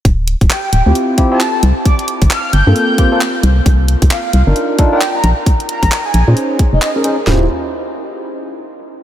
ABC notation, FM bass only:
X:1
M:4/4
L:1/16
Q:"Swing 16ths" 1/4=133
K:Dphr
V:1 name="FM bass" clef=bass
D,,,3 D,,, z2 D,,, D,, z6 C,, z | z3 G,,, z2 G,,, G,, z6 C,, z | C,,3 C,, z2 C,, G,,, z6 B,,, z | z3 B,,, z2 B,,, B,, z3 F,,, z4 |
D,,,2 z12 z2 |]